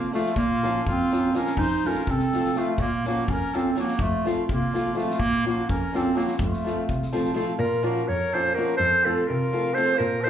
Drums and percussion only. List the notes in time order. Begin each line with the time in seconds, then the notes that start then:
0.15 snare
0.26 snare
0.36 kick
0.64 snare
0.86 kick
1.12 snare
1.34 snare
1.46 snare
1.57 kick
1.85 snare
1.95 snare
2.07 kick
2.20 snare
2.33 snare
2.45 snare
2.55 snare
2.78 kick
3.04 snare
3.28 kick
3.53 snare
3.76 snare
3.88 snare
3.99 kick
4.27 snare
4.49 kick
4.75 snare
4.98 snare
5.10 snare
5.20 kick
5.48 snare
5.69 kick
5.95 snare
6.19 snare
6.28 snare
6.39 kick
6.54 snare
6.67 snare
6.89 kick
7.02 snare
7.15 snare
7.25 snare
7.36 snare